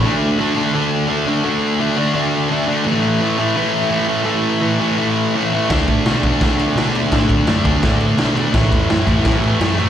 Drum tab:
CC |--------|--------|--------|--------|
RD |--------|--------|--------|--------|
SD |--------|--------|--------|--------|
BD |--------|--------|--------|--------|

CC |x-------|--------|--------|
RD |-xxxxxxx|xxxxxxxx|xxxxxxxx|
SD |o-o-o-o-|o-o-o-o-|o-o-o-o-|
BD |oo-oo---|oo-oo---|oo-oo---|